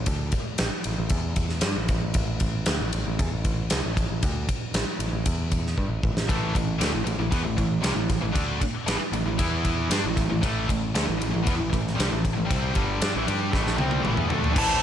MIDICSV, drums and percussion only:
0, 0, Header, 1, 2, 480
1, 0, Start_track
1, 0, Key_signature, 0, "minor"
1, 0, Tempo, 517241
1, 72, Time_signature, 4, 2, 24, 8
1, 13759, End_track
2, 0, Start_track
2, 0, Title_t, "Drums"
2, 57, Note_on_c, 9, 51, 103
2, 63, Note_on_c, 9, 36, 116
2, 150, Note_off_c, 9, 51, 0
2, 156, Note_off_c, 9, 36, 0
2, 294, Note_on_c, 9, 51, 70
2, 302, Note_on_c, 9, 36, 90
2, 387, Note_off_c, 9, 51, 0
2, 395, Note_off_c, 9, 36, 0
2, 538, Note_on_c, 9, 51, 93
2, 545, Note_on_c, 9, 38, 110
2, 631, Note_off_c, 9, 51, 0
2, 638, Note_off_c, 9, 38, 0
2, 781, Note_on_c, 9, 51, 75
2, 874, Note_off_c, 9, 51, 0
2, 1016, Note_on_c, 9, 51, 94
2, 1025, Note_on_c, 9, 36, 106
2, 1109, Note_off_c, 9, 51, 0
2, 1118, Note_off_c, 9, 36, 0
2, 1262, Note_on_c, 9, 51, 66
2, 1268, Note_on_c, 9, 36, 73
2, 1355, Note_off_c, 9, 51, 0
2, 1360, Note_off_c, 9, 36, 0
2, 1387, Note_on_c, 9, 38, 32
2, 1480, Note_off_c, 9, 38, 0
2, 1494, Note_on_c, 9, 51, 95
2, 1501, Note_on_c, 9, 38, 107
2, 1587, Note_off_c, 9, 51, 0
2, 1593, Note_off_c, 9, 38, 0
2, 1749, Note_on_c, 9, 51, 66
2, 1753, Note_on_c, 9, 36, 81
2, 1842, Note_off_c, 9, 51, 0
2, 1846, Note_off_c, 9, 36, 0
2, 1985, Note_on_c, 9, 51, 87
2, 1995, Note_on_c, 9, 36, 109
2, 2078, Note_off_c, 9, 51, 0
2, 2088, Note_off_c, 9, 36, 0
2, 2226, Note_on_c, 9, 51, 72
2, 2236, Note_on_c, 9, 36, 89
2, 2319, Note_off_c, 9, 51, 0
2, 2328, Note_off_c, 9, 36, 0
2, 2466, Note_on_c, 9, 51, 89
2, 2473, Note_on_c, 9, 38, 108
2, 2559, Note_off_c, 9, 51, 0
2, 2566, Note_off_c, 9, 38, 0
2, 2716, Note_on_c, 9, 51, 69
2, 2809, Note_off_c, 9, 51, 0
2, 2962, Note_on_c, 9, 36, 107
2, 2962, Note_on_c, 9, 51, 86
2, 3055, Note_off_c, 9, 36, 0
2, 3055, Note_off_c, 9, 51, 0
2, 3198, Note_on_c, 9, 51, 66
2, 3201, Note_on_c, 9, 36, 75
2, 3291, Note_off_c, 9, 51, 0
2, 3294, Note_off_c, 9, 36, 0
2, 3434, Note_on_c, 9, 51, 92
2, 3440, Note_on_c, 9, 38, 108
2, 3526, Note_off_c, 9, 51, 0
2, 3533, Note_off_c, 9, 38, 0
2, 3684, Note_on_c, 9, 36, 90
2, 3686, Note_on_c, 9, 51, 71
2, 3777, Note_off_c, 9, 36, 0
2, 3779, Note_off_c, 9, 51, 0
2, 3922, Note_on_c, 9, 51, 97
2, 3924, Note_on_c, 9, 36, 109
2, 4015, Note_off_c, 9, 51, 0
2, 4017, Note_off_c, 9, 36, 0
2, 4164, Note_on_c, 9, 36, 87
2, 4164, Note_on_c, 9, 51, 80
2, 4257, Note_off_c, 9, 36, 0
2, 4257, Note_off_c, 9, 51, 0
2, 4400, Note_on_c, 9, 51, 101
2, 4406, Note_on_c, 9, 38, 115
2, 4493, Note_off_c, 9, 51, 0
2, 4499, Note_off_c, 9, 38, 0
2, 4641, Note_on_c, 9, 51, 77
2, 4734, Note_off_c, 9, 51, 0
2, 4878, Note_on_c, 9, 51, 103
2, 4881, Note_on_c, 9, 36, 113
2, 4971, Note_off_c, 9, 51, 0
2, 4974, Note_off_c, 9, 36, 0
2, 5118, Note_on_c, 9, 51, 67
2, 5121, Note_on_c, 9, 36, 72
2, 5211, Note_off_c, 9, 51, 0
2, 5214, Note_off_c, 9, 36, 0
2, 5260, Note_on_c, 9, 38, 34
2, 5352, Note_off_c, 9, 38, 0
2, 5360, Note_on_c, 9, 36, 62
2, 5453, Note_off_c, 9, 36, 0
2, 5600, Note_on_c, 9, 36, 86
2, 5693, Note_off_c, 9, 36, 0
2, 5725, Note_on_c, 9, 38, 74
2, 5817, Note_off_c, 9, 38, 0
2, 5840, Note_on_c, 9, 36, 121
2, 5843, Note_on_c, 9, 51, 87
2, 5933, Note_off_c, 9, 36, 0
2, 5936, Note_off_c, 9, 51, 0
2, 6080, Note_on_c, 9, 36, 89
2, 6086, Note_on_c, 9, 51, 70
2, 6173, Note_off_c, 9, 36, 0
2, 6179, Note_off_c, 9, 51, 0
2, 6320, Note_on_c, 9, 51, 96
2, 6326, Note_on_c, 9, 38, 104
2, 6412, Note_off_c, 9, 51, 0
2, 6419, Note_off_c, 9, 38, 0
2, 6558, Note_on_c, 9, 51, 67
2, 6651, Note_off_c, 9, 51, 0
2, 6794, Note_on_c, 9, 36, 111
2, 6795, Note_on_c, 9, 51, 85
2, 6887, Note_off_c, 9, 36, 0
2, 6887, Note_off_c, 9, 51, 0
2, 7034, Note_on_c, 9, 36, 79
2, 7035, Note_on_c, 9, 51, 59
2, 7127, Note_off_c, 9, 36, 0
2, 7128, Note_off_c, 9, 51, 0
2, 7272, Note_on_c, 9, 51, 89
2, 7279, Note_on_c, 9, 38, 107
2, 7365, Note_off_c, 9, 51, 0
2, 7371, Note_off_c, 9, 38, 0
2, 7513, Note_on_c, 9, 36, 90
2, 7514, Note_on_c, 9, 51, 68
2, 7520, Note_on_c, 9, 38, 34
2, 7606, Note_off_c, 9, 36, 0
2, 7607, Note_off_c, 9, 51, 0
2, 7613, Note_off_c, 9, 38, 0
2, 7753, Note_on_c, 9, 51, 90
2, 7754, Note_on_c, 9, 36, 102
2, 7846, Note_off_c, 9, 36, 0
2, 7846, Note_off_c, 9, 51, 0
2, 7994, Note_on_c, 9, 36, 89
2, 7994, Note_on_c, 9, 51, 79
2, 8087, Note_off_c, 9, 36, 0
2, 8087, Note_off_c, 9, 51, 0
2, 8239, Note_on_c, 9, 51, 98
2, 8246, Note_on_c, 9, 38, 118
2, 8332, Note_off_c, 9, 51, 0
2, 8338, Note_off_c, 9, 38, 0
2, 8475, Note_on_c, 9, 51, 70
2, 8568, Note_off_c, 9, 51, 0
2, 8713, Note_on_c, 9, 51, 95
2, 8715, Note_on_c, 9, 36, 105
2, 8805, Note_off_c, 9, 51, 0
2, 8808, Note_off_c, 9, 36, 0
2, 8952, Note_on_c, 9, 51, 66
2, 8955, Note_on_c, 9, 36, 74
2, 9045, Note_off_c, 9, 51, 0
2, 9048, Note_off_c, 9, 36, 0
2, 9195, Note_on_c, 9, 51, 105
2, 9201, Note_on_c, 9, 38, 111
2, 9288, Note_off_c, 9, 51, 0
2, 9294, Note_off_c, 9, 38, 0
2, 9438, Note_on_c, 9, 36, 87
2, 9440, Note_on_c, 9, 51, 71
2, 9446, Note_on_c, 9, 38, 35
2, 9531, Note_off_c, 9, 36, 0
2, 9533, Note_off_c, 9, 51, 0
2, 9539, Note_off_c, 9, 38, 0
2, 9679, Note_on_c, 9, 36, 115
2, 9681, Note_on_c, 9, 51, 99
2, 9772, Note_off_c, 9, 36, 0
2, 9774, Note_off_c, 9, 51, 0
2, 9923, Note_on_c, 9, 36, 90
2, 9929, Note_on_c, 9, 51, 71
2, 10016, Note_off_c, 9, 36, 0
2, 10021, Note_off_c, 9, 51, 0
2, 10165, Note_on_c, 9, 51, 90
2, 10171, Note_on_c, 9, 38, 114
2, 10257, Note_off_c, 9, 51, 0
2, 10264, Note_off_c, 9, 38, 0
2, 10408, Note_on_c, 9, 51, 70
2, 10501, Note_off_c, 9, 51, 0
2, 10642, Note_on_c, 9, 51, 94
2, 10644, Note_on_c, 9, 36, 110
2, 10734, Note_off_c, 9, 51, 0
2, 10737, Note_off_c, 9, 36, 0
2, 10885, Note_on_c, 9, 36, 78
2, 10889, Note_on_c, 9, 51, 61
2, 10978, Note_off_c, 9, 36, 0
2, 10982, Note_off_c, 9, 51, 0
2, 11021, Note_on_c, 9, 38, 30
2, 11113, Note_off_c, 9, 38, 0
2, 11134, Note_on_c, 9, 51, 88
2, 11140, Note_on_c, 9, 38, 114
2, 11226, Note_off_c, 9, 51, 0
2, 11233, Note_off_c, 9, 38, 0
2, 11365, Note_on_c, 9, 36, 88
2, 11367, Note_on_c, 9, 51, 67
2, 11458, Note_off_c, 9, 36, 0
2, 11460, Note_off_c, 9, 51, 0
2, 11605, Note_on_c, 9, 36, 116
2, 11605, Note_on_c, 9, 51, 91
2, 11698, Note_off_c, 9, 36, 0
2, 11698, Note_off_c, 9, 51, 0
2, 11833, Note_on_c, 9, 51, 66
2, 11842, Note_on_c, 9, 36, 84
2, 11926, Note_off_c, 9, 51, 0
2, 11934, Note_off_c, 9, 36, 0
2, 12078, Note_on_c, 9, 51, 89
2, 12085, Note_on_c, 9, 38, 121
2, 12171, Note_off_c, 9, 51, 0
2, 12178, Note_off_c, 9, 38, 0
2, 12324, Note_on_c, 9, 51, 67
2, 12417, Note_off_c, 9, 51, 0
2, 12559, Note_on_c, 9, 36, 106
2, 12563, Note_on_c, 9, 38, 65
2, 12652, Note_off_c, 9, 36, 0
2, 12655, Note_off_c, 9, 38, 0
2, 12686, Note_on_c, 9, 38, 62
2, 12778, Note_off_c, 9, 38, 0
2, 12791, Note_on_c, 9, 48, 71
2, 12884, Note_off_c, 9, 48, 0
2, 12908, Note_on_c, 9, 48, 71
2, 13001, Note_off_c, 9, 48, 0
2, 13035, Note_on_c, 9, 47, 82
2, 13128, Note_off_c, 9, 47, 0
2, 13153, Note_on_c, 9, 45, 73
2, 13245, Note_off_c, 9, 45, 0
2, 13272, Note_on_c, 9, 43, 91
2, 13365, Note_off_c, 9, 43, 0
2, 13401, Note_on_c, 9, 43, 74
2, 13494, Note_off_c, 9, 43, 0
2, 13511, Note_on_c, 9, 49, 127
2, 13511, Note_on_c, 9, 57, 67
2, 13512, Note_on_c, 9, 36, 127
2, 13604, Note_off_c, 9, 49, 0
2, 13604, Note_off_c, 9, 57, 0
2, 13605, Note_off_c, 9, 36, 0
2, 13759, End_track
0, 0, End_of_file